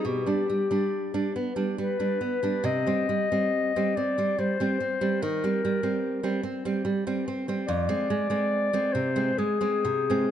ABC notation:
X:1
M:3/4
L:1/16
Q:1/4=70
K:Cm
V:1 name="Clarinet"
G6 z2 =B4 | e6 d2 c4 | B6 z6 | d6 c2 A4 |]
V:2 name="Nylon-string guitar" clef=bass
=B,, [G,D] G, [G,D]2 [G,D] =B, [G,D] G, [G,D] B, [G,D] | C, [G,C] G, [G,C]2 [G,C] C [G,C] G, [G,C] C [G,C] | E, [G,C] G, [G,C]2 [G,C] C [G,C] G, [G,C] C [G,C] | F,, [A,C] A, [A,C]2 [A,C] C, [A,C] A, [A,C] C, [A,C] |]